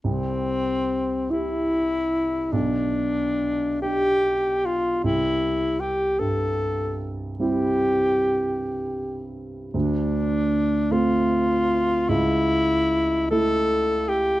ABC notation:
X:1
M:12/8
L:1/8
Q:3/8=51
K:C
V:1 name="Alto saxophone"
C3 E3 D3 G2 F | E2 G A2 z G4- G z | D3 F3 E3 A2 G |]
V:2 name="Grand piano"
C,,3 [EG]3 B,,,3 [DG]3 | C,,3 G,,3 [G,CE]6 | D,,3 [A,C]3 ^C,,3 [A,E]3 |]